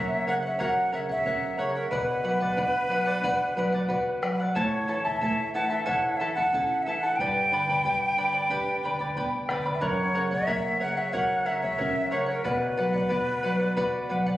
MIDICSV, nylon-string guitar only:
0, 0, Header, 1, 2, 480
1, 0, Start_track
1, 0, Key_signature, 2, "minor"
1, 0, Tempo, 658617
1, 1397, Time_signature, 4, 2, 24, 8
1, 10473, End_track
2, 0, Start_track
2, 0, Title_t, "Nylon-string guitar"
2, 0, Program_c, 0, 24
2, 0, Note_on_c, 0, 42, 56
2, 0, Note_on_c, 0, 58, 46
2, 193, Note_off_c, 0, 58, 0
2, 198, Note_on_c, 0, 49, 45
2, 430, Note_off_c, 0, 49, 0
2, 442, Note_on_c, 0, 66, 55
2, 672, Note_off_c, 0, 66, 0
2, 680, Note_on_c, 0, 49, 46
2, 911, Note_off_c, 0, 49, 0
2, 915, Note_on_c, 0, 61, 44
2, 1149, Note_off_c, 0, 61, 0
2, 1156, Note_on_c, 0, 49, 49
2, 1367, Note_off_c, 0, 42, 0
2, 1386, Note_off_c, 0, 49, 0
2, 1389, Note_on_c, 0, 47, 51
2, 1632, Note_on_c, 0, 54, 44
2, 1868, Note_off_c, 0, 54, 0
2, 1869, Note_on_c, 0, 62, 45
2, 2103, Note_on_c, 0, 54, 46
2, 2107, Note_off_c, 0, 62, 0
2, 2341, Note_on_c, 0, 62, 57
2, 2343, Note_off_c, 0, 54, 0
2, 2583, Note_off_c, 0, 62, 0
2, 2596, Note_on_c, 0, 54, 49
2, 2830, Note_on_c, 0, 66, 44
2, 2831, Note_off_c, 0, 54, 0
2, 3067, Note_off_c, 0, 66, 0
2, 3082, Note_on_c, 0, 54, 50
2, 3286, Note_off_c, 0, 47, 0
2, 3314, Note_off_c, 0, 54, 0
2, 3318, Note_on_c, 0, 45, 54
2, 3560, Note_on_c, 0, 52, 44
2, 3793, Note_off_c, 0, 52, 0
2, 3808, Note_on_c, 0, 57, 44
2, 4037, Note_off_c, 0, 57, 0
2, 4043, Note_on_c, 0, 52, 46
2, 4274, Note_off_c, 0, 52, 0
2, 4279, Note_on_c, 0, 64, 55
2, 4512, Note_off_c, 0, 64, 0
2, 4524, Note_on_c, 0, 52, 44
2, 4755, Note_off_c, 0, 52, 0
2, 4761, Note_on_c, 0, 61, 43
2, 4994, Note_off_c, 0, 61, 0
2, 5003, Note_on_c, 0, 52, 49
2, 5210, Note_off_c, 0, 45, 0
2, 5235, Note_off_c, 0, 52, 0
2, 5244, Note_on_c, 0, 43, 55
2, 5479, Note_on_c, 0, 50, 43
2, 5713, Note_off_c, 0, 50, 0
2, 5715, Note_on_c, 0, 55, 45
2, 5950, Note_off_c, 0, 55, 0
2, 5952, Note_on_c, 0, 50, 43
2, 6189, Note_off_c, 0, 50, 0
2, 6191, Note_on_c, 0, 62, 56
2, 6426, Note_on_c, 0, 50, 45
2, 6428, Note_off_c, 0, 62, 0
2, 6666, Note_off_c, 0, 50, 0
2, 6672, Note_on_c, 0, 59, 46
2, 6909, Note_off_c, 0, 59, 0
2, 6916, Note_on_c, 0, 50, 46
2, 7133, Note_off_c, 0, 43, 0
2, 7151, Note_off_c, 0, 50, 0
2, 7152, Note_on_c, 0, 42, 60
2, 7391, Note_on_c, 0, 49, 42
2, 7628, Note_off_c, 0, 49, 0
2, 7639, Note_on_c, 0, 58, 48
2, 7872, Note_off_c, 0, 58, 0
2, 7872, Note_on_c, 0, 49, 41
2, 8109, Note_off_c, 0, 49, 0
2, 8115, Note_on_c, 0, 66, 53
2, 8350, Note_off_c, 0, 66, 0
2, 8354, Note_on_c, 0, 49, 46
2, 8590, Note_off_c, 0, 49, 0
2, 8596, Note_on_c, 0, 61, 42
2, 8830, Note_off_c, 0, 61, 0
2, 8842, Note_on_c, 0, 49, 51
2, 9046, Note_off_c, 0, 42, 0
2, 9073, Note_off_c, 0, 49, 0
2, 9086, Note_on_c, 0, 47, 51
2, 9322, Note_on_c, 0, 54, 48
2, 9554, Note_off_c, 0, 54, 0
2, 9556, Note_on_c, 0, 59, 41
2, 9790, Note_off_c, 0, 59, 0
2, 9800, Note_on_c, 0, 54, 44
2, 10032, Note_off_c, 0, 54, 0
2, 10041, Note_on_c, 0, 66, 57
2, 10273, Note_off_c, 0, 66, 0
2, 10278, Note_on_c, 0, 54, 45
2, 10473, Note_off_c, 0, 47, 0
2, 10473, Note_off_c, 0, 54, 0
2, 10473, End_track
0, 0, End_of_file